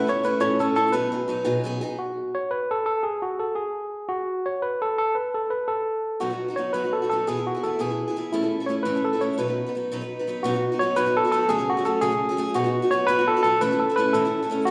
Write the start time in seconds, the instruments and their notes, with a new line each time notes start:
0.07 steel-string acoustic guitar A3 C#4 E4 A4, tine electric piano C#5
0.23 steel-string acoustic guitar A3 C#4 E4 A4, tine electric piano B4
0.40 steel-string acoustic guitar A2 E3 A3 C#4 E4 A4, tine electric piano C#5
0.59 steel-string acoustic guitar A3 C#4 E4 A4, tine electric piano A4
0.76 steel-string acoustic guitar A3 C#4 E4 A4, tine electric piano A4
0.92 steel-string acoustic guitar B2 F#3 B3 D#4 G#4, tine electric piano B4
1.12 steel-string acoustic guitar B3 D#4 G#4
1.28 steel-string acoustic guitar F#3 B3 D#4 G#4
1.44 steel-string acoustic guitar B2 F#3 B3 D#4 G#4
1.64 steel-string acoustic guitar F#3 B3 D#4 G#4
1.81 steel-string acoustic guitar B3 D#4 G#4
1.99 tine electric piano F#4
2.35 tine electric piano C#5
2.51 tine electric piano B4
2.71 tine electric piano A4
2.86 tine electric piano A4
3.03 tine electric piano G#4
3.22 tine electric piano F#4
3.39 tine electric piano A4
3.55 tine electric piano G#4
4.09 tine electric piano F#4
4.46 tine electric piano C#5
4.62 tine electric piano B4
4.82 tine electric piano A4
4.98 tine electric piano A4
5.15 tine electric piano B4
5.34 tine electric piano A4
5.50 tine electric piano B4
5.68 tine electric piano A4
6.20 steel-string acoustic guitar B2 F#3 B3 D#4 F#4, tine electric piano F#4
6.31 steel-string acoustic guitar B3 D#4 F#4
6.48 steel-string acoustic guitar B3 D#4 F#4
6.56 steel-string acoustic guitar F#3 B3 D#4 F#4, tine electric piano C#5
6.73 steel-string acoustic guitar B2 F#3 B3 D#4 F#4, tine electric piano B4
6.84 steel-string acoustic guitar B3 D#4 F#4
6.93 tine electric piano A4
7.02 steel-string acoustic guitar B3 D#4 F#4
7.10 steel-string acoustic guitar F#3 B3 D#4 F#4, tine electric piano A4
7.27 steel-string acoustic guitar B2 E3 B3 E4 G#4, tine electric piano G#4
7.37 steel-string acoustic guitar B3 E4 G#4
7.47 tine electric piano F#4
7.55 steel-string acoustic guitar B3 E4 G#4
7.63 steel-string acoustic guitar E3 B3 E4 G#4, tine electric piano A4
7.79 steel-string acoustic guitar B2 E3 B3 E4 G#4, tine electric piano G#4
7.89 steel-string acoustic guitar B3 E4 G#4
8.08 steel-string acoustic guitar B3 E4 G#4
8.16 steel-string acoustic guitar E3 B3 E4 G#4
8.32 steel-string acoustic guitar A2 E3 A3 C#4 E4 A4, tine electric piano E4
8.42 steel-string acoustic guitar A3 C#4 E4 A4
8.60 steel-string acoustic guitar A3 C#4 E4 A4
8.66 steel-string acoustic guitar A3 C#4 E4, tine electric piano C#5
8.71 steel-string acoustic guitar A4
8.83 steel-string acoustic guitar A2 E3 A3 C#4 E4 A4, tine electric piano B4
8.95 steel-string acoustic guitar A3 C#4 E4 A4
9.05 tine electric piano A4
9.13 steel-string acoustic guitar A3 C#4 E4 A4
9.21 steel-string acoustic guitar A3 C#4 E4 A4, tine electric piano C#5
9.38 steel-string acoustic guitar B2 F#3 B3 D#4 B4, tine electric piano B4
9.48 steel-string acoustic guitar B3 D#4 B4
9.67 steel-string acoustic guitar B3 D#4 B4
9.75 steel-string acoustic guitar F#3 B3 D#4 B4
9.91 steel-string acoustic guitar B2 F#3 B3 D#4 B4
10.01 steel-string acoustic guitar B3 D#4 B4
10.19 steel-string acoustic guitar B3 D#4 B4
10.27 steel-string acoustic guitar F#3 B3 D#4 B4
10.43 steel-string acoustic guitar B2 F#3 B3 D#4 F#4, tine electric piano F#4
10.54 steel-string acoustic guitar B3 D#4 F#4
10.72 steel-string acoustic guitar B3 D#4 F#4
10.79 steel-string acoustic guitar F#3 B3 D#4 F#4, tine electric piano C#5
10.96 steel-string acoustic guitar B2 F#3 B3 D#4 F#4, tine electric piano B4
11.06 steel-string acoustic guitar B3 D#4 F#4
11.17 tine electric piano A4
11.25 steel-string acoustic guitar B3 D#4 F#4
11.32 steel-string acoustic guitar F#3 B3 D#4 F#4, tine electric piano A4
11.49 steel-string acoustic guitar F#2 C#3 F#3 A3 C#4 G#4, tine electric piano G#4
11.58 steel-string acoustic guitar F#3 A3 C#4 G#4
11.70 tine electric piano F#4
11.77 steel-string acoustic guitar F#3 A3 C#4 G#4
11.85 steel-string acoustic guitar F#3 A3 C#4 G#4, tine electric piano A4
12.01 steel-string acoustic guitar F#2 C#3 F#3 A3 C#4 G#4, tine electric piano G#4
12.10 steel-string acoustic guitar F#3 A3 C#4 G#4
12.29 steel-string acoustic guitar F#3 A3 C#4 G#4
12.37 steel-string acoustic guitar F#3 A3 C#4 G#4
12.54 steel-string acoustic guitar B2 F#3 B3 D#4 F#4, tine electric piano F#4
12.64 steel-string acoustic guitar B3 D#4 F#4
12.82 steel-string acoustic guitar B3 D#4 F#4
12.91 steel-string acoustic guitar F#3 B3 D#4 F#4, tine electric piano C#5
13.07 steel-string acoustic guitar B2 F#3 B3 D#4 F#4, tine electric piano B4
13.19 steel-string acoustic guitar B3 D#4 F#4
13.28 tine electric piano A4
13.37 steel-string acoustic guitar B3 D#4 F#4
13.43 steel-string acoustic guitar F#3 B3 D#4 F#4, tine electric piano A4
13.61 steel-string acoustic guitar A2 E3 A3 C#4 E4 A4, tine electric piano B4
13.71 steel-string acoustic guitar A3 C#4 E4 A4
13.80 tine electric piano A4
13.89 steel-string acoustic guitar A3 C#4 E4 A4
13.96 steel-string acoustic guitar A3 C#4 E4 A4, tine electric piano B4
14.13 steel-string acoustic guitar A2 E3 A3 C#4 E4 A4, tine electric piano A4
14.25 steel-string acoustic guitar A3 C#4 E4 A4
14.42 steel-string acoustic guitar A3 C#4 E4 A4
14.50 steel-string acoustic guitar A3 C#4 E4 A4
14.65 steel-string acoustic guitar B2 F#3 B3, tine electric piano F#4